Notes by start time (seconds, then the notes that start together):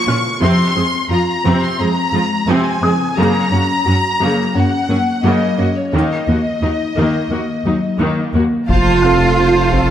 Already playing: C#6
0.07 A#2 C#4 F4 F6
0.41 F2 C3 F3 C4 C6
0.76 F2 G#3 C4 G#4
1.10 F2 F3 F4 A#5
1.45 F2 C3 F3 C4
1.62 C6
1.79 F2 G#3 C4 G#4 A#5
2.13 F2 F3 G#3 F4
2.48 F2 C3 F3 C4 G#5
2.83 F2 G#3 C4 G#4 D#6
3.17 F#2 C#3 F#3 A#3 A#5
3.52 F#2 A#3 C#4 F#4
3.86 F#2 F#3 C#4 F#4
4.20 F#2 C#3 F#3 A#3
4.55 F#2 A#3 C#4 F#4 F#5
4.89 F#2 F#3 A#3 C#4
5.23 F#2 C#3 F#3 A#3 D#5
5.58 F#2 A#3 C#4 F#4
5.76 C#5
5.93 D#2 D#3 A#3 D#5
6.28 D#2 A#3 F#4
6.62 D#2 F#3 D#4
6.96 D#2 D#3 A#3
7.31 D#2 A#3 F#4
7.65 D#2 F#3 D#4
8.00 D#2 D#3 A#3
8.34 D#2 A#3 F#4
8.69 F1 F3 A3 F4 C5 F5 A5, taiko
9.02 C4 A4 F5 A5 F6
9.37 C4 F4 C5 F5 A5
9.72 C4 A4 F5 A5, taiko